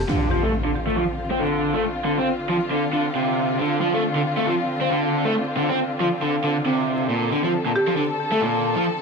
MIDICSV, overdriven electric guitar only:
0, 0, Header, 1, 2, 480
1, 0, Start_track
1, 0, Key_signature, -1, "minor"
1, 0, Tempo, 437956
1, 100, Time_signature, 4, 2, 24, 8
1, 9884, End_track
2, 0, Start_track
2, 0, Title_t, "Overdriven electric guitar"
2, 0, Program_c, 0, 29
2, 99, Note_on_c, 0, 50, 72
2, 329, Note_off_c, 0, 50, 0
2, 336, Note_on_c, 0, 53, 67
2, 457, Note_off_c, 0, 53, 0
2, 473, Note_on_c, 0, 57, 88
2, 563, Note_off_c, 0, 57, 0
2, 712, Note_on_c, 0, 50, 66
2, 767, Note_off_c, 0, 50, 0
2, 953, Note_on_c, 0, 57, 89
2, 1051, Note_on_c, 0, 53, 73
2, 1052, Note_off_c, 0, 57, 0
2, 1127, Note_off_c, 0, 53, 0
2, 1434, Note_on_c, 0, 60, 84
2, 1531, Note_on_c, 0, 50, 74
2, 1533, Note_off_c, 0, 60, 0
2, 1900, Note_off_c, 0, 50, 0
2, 1915, Note_on_c, 0, 57, 94
2, 2013, Note_off_c, 0, 57, 0
2, 2255, Note_on_c, 0, 50, 67
2, 2389, Note_off_c, 0, 50, 0
2, 2397, Note_on_c, 0, 60, 89
2, 2494, Note_off_c, 0, 60, 0
2, 2737, Note_on_c, 0, 53, 92
2, 2810, Note_off_c, 0, 53, 0
2, 2975, Note_on_c, 0, 50, 71
2, 3109, Note_off_c, 0, 50, 0
2, 3216, Note_on_c, 0, 50, 68
2, 3350, Note_off_c, 0, 50, 0
2, 3457, Note_on_c, 0, 48, 76
2, 3929, Note_off_c, 0, 48, 0
2, 3937, Note_on_c, 0, 50, 76
2, 4168, Note_off_c, 0, 50, 0
2, 4178, Note_on_c, 0, 53, 72
2, 4298, Note_off_c, 0, 53, 0
2, 4318, Note_on_c, 0, 57, 87
2, 4405, Note_off_c, 0, 57, 0
2, 4555, Note_on_c, 0, 50, 69
2, 4609, Note_off_c, 0, 50, 0
2, 4792, Note_on_c, 0, 57, 88
2, 4892, Note_off_c, 0, 57, 0
2, 4897, Note_on_c, 0, 53, 70
2, 4970, Note_off_c, 0, 53, 0
2, 5273, Note_on_c, 0, 60, 89
2, 5372, Note_off_c, 0, 60, 0
2, 5375, Note_on_c, 0, 50, 76
2, 5743, Note_off_c, 0, 50, 0
2, 5758, Note_on_c, 0, 57, 91
2, 5855, Note_off_c, 0, 57, 0
2, 6105, Note_on_c, 0, 50, 71
2, 6234, Note_off_c, 0, 50, 0
2, 6241, Note_on_c, 0, 60, 93
2, 6336, Note_off_c, 0, 60, 0
2, 6579, Note_on_c, 0, 53, 91
2, 6651, Note_off_c, 0, 53, 0
2, 6821, Note_on_c, 0, 50, 73
2, 6952, Note_off_c, 0, 50, 0
2, 7059, Note_on_c, 0, 50, 69
2, 7191, Note_off_c, 0, 50, 0
2, 7301, Note_on_c, 0, 48, 72
2, 7770, Note_off_c, 0, 48, 0
2, 7779, Note_on_c, 0, 46, 75
2, 8009, Note_off_c, 0, 46, 0
2, 8018, Note_on_c, 0, 50, 68
2, 8138, Note_off_c, 0, 50, 0
2, 8159, Note_on_c, 0, 53, 86
2, 8246, Note_off_c, 0, 53, 0
2, 8401, Note_on_c, 0, 46, 66
2, 8452, Note_off_c, 0, 46, 0
2, 8637, Note_on_c, 0, 53, 89
2, 8729, Note_off_c, 0, 53, 0
2, 8734, Note_on_c, 0, 50, 74
2, 8808, Note_off_c, 0, 50, 0
2, 9115, Note_on_c, 0, 57, 89
2, 9213, Note_off_c, 0, 57, 0
2, 9218, Note_on_c, 0, 46, 72
2, 9584, Note_off_c, 0, 46, 0
2, 9597, Note_on_c, 0, 53, 90
2, 9694, Note_off_c, 0, 53, 0
2, 9884, End_track
0, 0, End_of_file